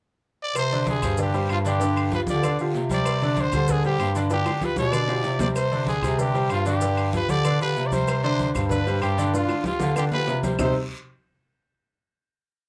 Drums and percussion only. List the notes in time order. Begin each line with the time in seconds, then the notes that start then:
0.55 cowbell, high conga, low agogo, long guiro, claves, maracas
0.71 high conga, maracas
0.87 cowbell, high conga, low agogo, short guiro, maracas
1.02 high conga, low conga, low agogo, short guiro, claves, maracas
1.17 cowbell, high conga, long guiro, maracas
1.34 high conga, low agogo, maracas
1.49 cowbell, high conga, low agogo, short guiro, claves, maracas
1.65 cowbell, high conga, low agogo, short guiro, maracas
1.80 cowbell, high conga, long guiro, maracas
1.96 high conga, low agogo, claves, maracas
2.12 cowbell, high conga, low agogo, short guiro, maracas
2.27 cowbell, high conga, short guiro, maracas
2.42 cowbell, high conga, low agogo, long guiro, claves, maracas
2.58 high conga, low agogo, maracas
2.74 cowbell, high conga, low timbale, short guiro, maracas
2.89 high conga, low agogo, short guiro, maracas
3.05 cowbell, low agogo, long guiro, claves, maracas
3.21 high conga, maracas
3.36 cowbell, high conga, low agogo, short guiro, maracas
3.52 high conga, low conga, low agogo, short guiro, claves, maracas
3.68 cowbell, high conga, low conga, long guiro, maracas
3.84 high conga, low agogo, maracas
4.00 cowbell, high conga, low timbale, low agogo, short guiro, claves, maracas
4.15 cowbell, high conga, low agogo, short guiro, maracas
4.30 cowbell, high bongo, high conga, long guiro, maracas
4.46 high bongo, high conga, low agogo, claves, maracas
4.61 cowbell, high conga, low agogo, short guiro, maracas
4.76 cowbell, high bongo, high conga, short guiro, maracas
4.92 cowbell, low bongo, high conga, low agogo, long guiro, claves, maracas
5.08 low bongo, high conga, high timbale, low agogo, maracas
5.24 cowbell, low bongo, high conga, high timbale, short guiro, maracas
5.39 low bongo, high conga, low timbale, low agogo, short guiro, maracas
5.55 cowbell, high conga, low agogo, long guiro, claves, maracas
5.71 high conga, maracas
5.87 cowbell, high conga, low agogo, short guiro, maracas
6.02 high conga, low conga, low agogo, short guiro, claves, maracas
6.18 cowbell, high conga, long guiro, maracas
6.34 high conga, low agogo, maracas
6.50 cowbell, high conga, low agogo, short guiro, claves, maracas
6.66 cowbell, high conga, low agogo, short guiro, maracas
6.81 cowbell, high conga, long guiro, maracas
6.97 high conga, low agogo, claves, maracas
7.13 cowbell, high conga, low agogo, short guiro, maracas
7.29 cowbell, high conga, short guiro, maracas
7.44 cowbell, high conga, low agogo, long guiro, claves, maracas
7.60 high conga, low agogo, maracas
7.76 cowbell, high conga, low timbale, short guiro, maracas
7.92 high conga, low agogo, short guiro, maracas
8.07 cowbell, high conga, low agogo, long guiro, claves, maracas
8.24 high conga, maracas
8.39 cowbell, high conga, low agogo, short guiro, maracas
8.55 high conga, low conga, low agogo, short guiro, claves, maracas
8.69 cowbell, high conga, low conga, long guiro, maracas
8.86 high conga, low agogo, maracas
9.01 cowbell, high conga, low agogo, short guiro, claves, maracas
9.17 cowbell, high conga, low agogo, short guiro, maracas
9.33 cowbell, high bongo, high conga, long guiro, maracas
9.48 high bongo, high conga, low agogo, claves, maracas
9.64 cowbell, high bongo, high conga, low agogo, short guiro, maracas
9.80 cowbell, low bongo, high conga, high timbale, short guiro, maracas
9.95 cowbell, low bongo, high conga, low agogo, claves, maracas
10.11 low bongo, high conga, low timbale, low agogo, maracas
10.27 cowbell, low bongo, high conga, low timbale, short guiro, maracas
10.43 low bongo, high conga, low timbale, low agogo, short guiro, maracas
10.59 low bongo, low conga, low timbale, long guiro, claves, maracas